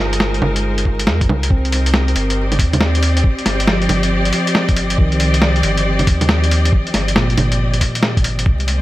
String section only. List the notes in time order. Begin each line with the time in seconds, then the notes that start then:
Already playing: G#3 D#4 A#4 C5
1.52 C4
1.67 G4 D#5
2.47 D5
8.46 G#3
8.68 A#3 C5